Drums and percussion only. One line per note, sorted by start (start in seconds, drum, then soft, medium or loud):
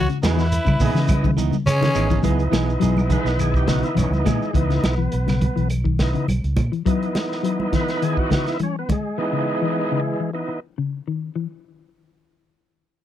0.09 closed hi-hat soft
0.09 shekere soft
0.23 snare medium
0.23 closed hi-hat medium
0.23 high conga loud
0.23 claves medium
0.23 shekere medium
0.39 snare soft
0.39 shekere soft
0.52 closed hi-hat medium
0.52 high conga soft
0.52 shekere loud
0.66 kick medium
0.66 high conga medium
0.66 claves medium
0.66 shekere soft
0.80 kick medium
0.80 open hi-hat medium
0.80 low conga loud
0.80 shekere medium
0.96 snare soft
0.96 high conga soft
0.96 shekere soft
1.08 kick medium
1.08 closed hi-hat medium
1.08 high conga loud
1.08 claves medium
1.08 shekere medium
1.24 kick medium
1.24 high conga loud
1.24 shekere soft
1.38 closed hi-hat medium
1.38 shekere medium
1.53 high conga medium
1.53 shekere soft
1.67 closed hi-hat medium
1.67 low conga medium
1.67 claves medium
1.67 shekere loud
1.83 snare soft
1.83 closed hi-hat soft
1.83 low conga loud
1.83 shekere soft
1.95 closed hi-hat medium
1.95 claves medium
1.95 shekere medium
2.10 kick medium
2.10 low conga medium
2.10 shekere soft
2.23 kick loud
2.23 closed hi-hat medium
2.23 low conga medium
2.23 shekere medium
2.39 closed hi-hat soft
2.39 shekere soft
2.53 snare medium
2.53 closed hi-hat soft
2.53 high conga loud
2.53 claves medium
2.53 shekere medium
2.70 shekere soft
2.81 closed hi-hat medium
2.81 shekere medium
2.97 high conga medium
2.97 claves medium
2.97 shekere soft
3.10 kick medium
3.10 closed hi-hat medium
3.10 high conga medium
3.10 low conga medium
3.10 shekere medium
3.26 snare soft
3.26 closed hi-hat soft
3.26 shekere soft
3.39 closed hi-hat medium
3.39 high conga soft
3.39 claves medium
3.39 shekere medium
3.54 kick medium
3.54 shekere soft
3.67 kick medium
3.67 snare medium
3.67 closed hi-hat medium
3.67 shekere medium
3.83 closed hi-hat soft
3.83 shekere soft
3.97 closed hi-hat medium
3.97 high conga medium
3.97 claves medium
3.97 shekere medium
4.13 high conga medium
4.13 shekere soft
4.26 kick medium
4.26 closed hi-hat soft
4.26 high conga loud
4.26 low conga medium
4.26 claves medium
4.26 shekere medium
4.42 shekere soft
4.54 kick loud
4.54 closed hi-hat medium
4.70 snare soft
4.70 closed hi-hat soft
4.84 snare medium
4.84 closed hi-hat soft
4.84 high conga medium
4.84 claves medium
5.12 closed hi-hat medium
5.12 high conga soft
5.28 snare soft
5.28 closed hi-hat soft
5.28 high conga medium
5.28 claves medium
5.41 kick medium
5.41 closed hi-hat medium
5.41 high conga medium
5.41 low conga medium
5.57 closed hi-hat soft
5.57 high conga soft
5.70 closed hi-hat medium
5.70 high conga soft
5.70 claves medium
5.85 kick medium
5.99 kick medium
5.99 snare medium
5.99 closed hi-hat soft
5.99 low conga medium
6.15 closed hi-hat soft
6.28 closed hi-hat medium
6.28 high conga medium
6.28 claves medium
6.44 closed hi-hat soft
6.57 kick medium
6.57 closed hi-hat soft
6.57 high conga loud
6.57 low conga medium
6.57 claves medium
6.73 closed hi-hat soft
6.86 kick loud
6.86 closed hi-hat medium
7.02 closed hi-hat soft
7.15 snare medium
7.15 closed hi-hat soft
7.15 high conga medium
7.32 snare soft
7.44 closed hi-hat medium
7.44 high conga soft
7.60 high conga medium
7.73 kick medium
7.73 snare soft
7.73 closed hi-hat soft
7.73 low conga medium
7.88 snare soft
7.88 closed hi-hat soft
7.88 high conga soft
8.01 closed hi-hat medium
8.01 high conga soft
8.17 kick medium
8.31 kick medium
8.31 snare medium
8.31 closed hi-hat soft
8.31 low conga medium
8.46 snare soft
8.46 closed hi-hat soft
8.59 closed hi-hat medium
8.59 high conga medium
8.89 kick medium
8.89 closed hi-hat soft
8.89 high conga loud
8.89 low conga medium